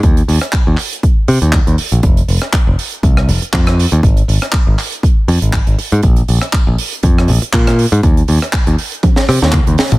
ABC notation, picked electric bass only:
X:1
M:4/4
L:1/16
Q:"Swing 16ths" 1/4=120
K:Ebmix
V:1 name="Picked electric bass" clef=bass
E,, z E,, z2 E,, z4 C, E,, z E,, z B,,, | F,,, z F,,, z2 F,,, z2 C,,2 F,,, z F,,2 z E,, | A,,, z A,,, z2 A,,, z4 F,, A,,, z A,,, z A,, | B,,, z B,,, z2 B,,, z2 F,,2 B,,, z B,,2 z A,, |
E,, z E,, z2 E,, z4 C, E,, z E,, z B,,, |]